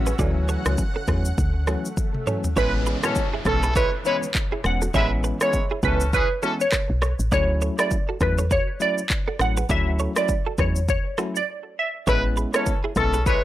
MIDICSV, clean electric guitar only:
0, 0, Header, 1, 2, 480
1, 0, Start_track
1, 0, Key_signature, 3, "major"
1, 0, Tempo, 594059
1, 154, Time_signature, 4, 2, 24, 8
1, 10860, End_track
2, 0, Start_track
2, 0, Title_t, "Clean electric guitar"
2, 0, Program_c, 0, 27
2, 54, Note_on_c, 0, 71, 81
2, 60, Note_on_c, 0, 68, 64
2, 113, Note_off_c, 0, 71, 0
2, 117, Note_off_c, 0, 68, 0
2, 155, Note_on_c, 0, 74, 111
2, 161, Note_on_c, 0, 69, 89
2, 235, Note_off_c, 0, 74, 0
2, 240, Note_off_c, 0, 69, 0
2, 395, Note_on_c, 0, 73, 84
2, 401, Note_on_c, 0, 69, 65
2, 476, Note_off_c, 0, 73, 0
2, 480, Note_off_c, 0, 69, 0
2, 774, Note_on_c, 0, 69, 76
2, 781, Note_on_c, 0, 66, 58
2, 833, Note_off_c, 0, 69, 0
2, 837, Note_off_c, 0, 66, 0
2, 875, Note_on_c, 0, 71, 78
2, 881, Note_on_c, 0, 68, 62
2, 956, Note_off_c, 0, 71, 0
2, 960, Note_off_c, 0, 68, 0
2, 1355, Note_on_c, 0, 69, 80
2, 1362, Note_on_c, 0, 66, 64
2, 1436, Note_off_c, 0, 69, 0
2, 1441, Note_off_c, 0, 66, 0
2, 1836, Note_on_c, 0, 73, 79
2, 1842, Note_on_c, 0, 69, 64
2, 1916, Note_off_c, 0, 73, 0
2, 1921, Note_off_c, 0, 69, 0
2, 2075, Note_on_c, 0, 73, 85
2, 2082, Note_on_c, 0, 69, 73
2, 2156, Note_off_c, 0, 73, 0
2, 2161, Note_off_c, 0, 69, 0
2, 2316, Note_on_c, 0, 71, 78
2, 2323, Note_on_c, 0, 68, 60
2, 2396, Note_off_c, 0, 71, 0
2, 2401, Note_off_c, 0, 68, 0
2, 2455, Note_on_c, 0, 69, 74
2, 2461, Note_on_c, 0, 66, 59
2, 2513, Note_off_c, 0, 69, 0
2, 2517, Note_off_c, 0, 66, 0
2, 2695, Note_on_c, 0, 68, 81
2, 2702, Note_on_c, 0, 64, 63
2, 2753, Note_off_c, 0, 68, 0
2, 2758, Note_off_c, 0, 64, 0
2, 2935, Note_on_c, 0, 71, 75
2, 2941, Note_on_c, 0, 68, 63
2, 2993, Note_off_c, 0, 71, 0
2, 2998, Note_off_c, 0, 68, 0
2, 3036, Note_on_c, 0, 69, 85
2, 3042, Note_on_c, 0, 64, 64
2, 3175, Note_off_c, 0, 69, 0
2, 3180, Note_off_c, 0, 64, 0
2, 3654, Note_on_c, 0, 68, 78
2, 3660, Note_on_c, 0, 64, 60
2, 3713, Note_off_c, 0, 68, 0
2, 3717, Note_off_c, 0, 64, 0
2, 3893, Note_on_c, 0, 69, 80
2, 3900, Note_on_c, 0, 66, 60
2, 3952, Note_off_c, 0, 69, 0
2, 3957, Note_off_c, 0, 66, 0
2, 3994, Note_on_c, 0, 73, 114
2, 4000, Note_on_c, 0, 69, 91
2, 4075, Note_off_c, 0, 73, 0
2, 4080, Note_off_c, 0, 69, 0
2, 4235, Note_on_c, 0, 71, 86
2, 4241, Note_on_c, 0, 68, 65
2, 4316, Note_off_c, 0, 71, 0
2, 4320, Note_off_c, 0, 68, 0
2, 4615, Note_on_c, 0, 68, 78
2, 4621, Note_on_c, 0, 64, 56
2, 4673, Note_off_c, 0, 68, 0
2, 4678, Note_off_c, 0, 64, 0
2, 4715, Note_on_c, 0, 71, 83
2, 4722, Note_on_c, 0, 68, 62
2, 4796, Note_off_c, 0, 71, 0
2, 4801, Note_off_c, 0, 68, 0
2, 5195, Note_on_c, 0, 69, 87
2, 5202, Note_on_c, 0, 66, 63
2, 5276, Note_off_c, 0, 69, 0
2, 5281, Note_off_c, 0, 66, 0
2, 5676, Note_on_c, 0, 73, 81
2, 5682, Note_on_c, 0, 69, 63
2, 5757, Note_off_c, 0, 73, 0
2, 5761, Note_off_c, 0, 69, 0
2, 5916, Note_on_c, 0, 74, 92
2, 5922, Note_on_c, 0, 69, 71
2, 5996, Note_off_c, 0, 74, 0
2, 6001, Note_off_c, 0, 69, 0
2, 6156, Note_on_c, 0, 73, 77
2, 6163, Note_on_c, 0, 69, 61
2, 6237, Note_off_c, 0, 73, 0
2, 6241, Note_off_c, 0, 69, 0
2, 6296, Note_on_c, 0, 71, 74
2, 6302, Note_on_c, 0, 68, 59
2, 6354, Note_off_c, 0, 71, 0
2, 6358, Note_off_c, 0, 68, 0
2, 6535, Note_on_c, 0, 69, 76
2, 6542, Note_on_c, 0, 66, 62
2, 6593, Note_off_c, 0, 69, 0
2, 6598, Note_off_c, 0, 66, 0
2, 6775, Note_on_c, 0, 73, 79
2, 6781, Note_on_c, 0, 69, 64
2, 6833, Note_off_c, 0, 73, 0
2, 6838, Note_off_c, 0, 69, 0
2, 6875, Note_on_c, 0, 71, 85
2, 6882, Note_on_c, 0, 66, 67
2, 7015, Note_off_c, 0, 71, 0
2, 7020, Note_off_c, 0, 66, 0
2, 7495, Note_on_c, 0, 69, 79
2, 7502, Note_on_c, 0, 66, 59
2, 7553, Note_off_c, 0, 69, 0
2, 7558, Note_off_c, 0, 66, 0
2, 7736, Note_on_c, 0, 71, 83
2, 7743, Note_on_c, 0, 68, 64
2, 7794, Note_off_c, 0, 71, 0
2, 7798, Note_off_c, 0, 68, 0
2, 7837, Note_on_c, 0, 74, 114
2, 7843, Note_on_c, 0, 69, 88
2, 7917, Note_off_c, 0, 74, 0
2, 7921, Note_off_c, 0, 69, 0
2, 8077, Note_on_c, 0, 73, 80
2, 8083, Note_on_c, 0, 69, 64
2, 8157, Note_off_c, 0, 73, 0
2, 8162, Note_off_c, 0, 69, 0
2, 8456, Note_on_c, 0, 69, 74
2, 8462, Note_on_c, 0, 66, 56
2, 8514, Note_off_c, 0, 69, 0
2, 8518, Note_off_c, 0, 66, 0
2, 8556, Note_on_c, 0, 71, 82
2, 8562, Note_on_c, 0, 68, 65
2, 8636, Note_off_c, 0, 71, 0
2, 8641, Note_off_c, 0, 68, 0
2, 9036, Note_on_c, 0, 69, 86
2, 9043, Note_on_c, 0, 66, 67
2, 9117, Note_off_c, 0, 69, 0
2, 9121, Note_off_c, 0, 66, 0
2, 9757, Note_on_c, 0, 73, 89
2, 9764, Note_on_c, 0, 69, 68
2, 9837, Note_off_c, 0, 73, 0
2, 9842, Note_off_c, 0, 69, 0
2, 9996, Note_on_c, 0, 71, 73
2, 10003, Note_on_c, 0, 68, 61
2, 10077, Note_off_c, 0, 71, 0
2, 10081, Note_off_c, 0, 68, 0
2, 10135, Note_on_c, 0, 69, 72
2, 10142, Note_on_c, 0, 66, 55
2, 10193, Note_off_c, 0, 69, 0
2, 10198, Note_off_c, 0, 66, 0
2, 10376, Note_on_c, 0, 68, 78
2, 10382, Note_on_c, 0, 64, 63
2, 10434, Note_off_c, 0, 68, 0
2, 10438, Note_off_c, 0, 64, 0
2, 10615, Note_on_c, 0, 71, 80
2, 10622, Note_on_c, 0, 68, 61
2, 10673, Note_off_c, 0, 71, 0
2, 10678, Note_off_c, 0, 68, 0
2, 10715, Note_on_c, 0, 69, 84
2, 10723, Note_on_c, 0, 64, 69
2, 10855, Note_off_c, 0, 69, 0
2, 10860, Note_off_c, 0, 64, 0
2, 10860, End_track
0, 0, End_of_file